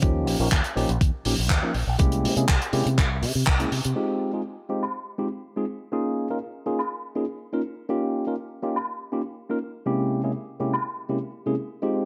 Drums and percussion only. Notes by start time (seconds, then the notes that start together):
0.02 kick, closed hi-hat
0.27 open hi-hat
0.51 kick, clap, closed hi-hat
0.64 closed hi-hat
0.77 open hi-hat
0.89 closed hi-hat
1.01 kick, closed hi-hat
1.25 open hi-hat
1.50 kick, clap, closed hi-hat
1.74 open hi-hat
1.99 kick, closed hi-hat
2.12 closed hi-hat
2.25 open hi-hat
2.37 closed hi-hat
2.49 kick, clap, closed hi-hat
2.62 closed hi-hat
2.73 open hi-hat
2.87 closed hi-hat
2.98 kick, clap, closed hi-hat
3.23 open hi-hat
3.47 kick, clap, closed hi-hat
3.60 closed hi-hat
3.72 open hi-hat
3.85 closed hi-hat
4.83 high woodblock
6.79 high woodblock
8.76 high woodblock
10.73 high woodblock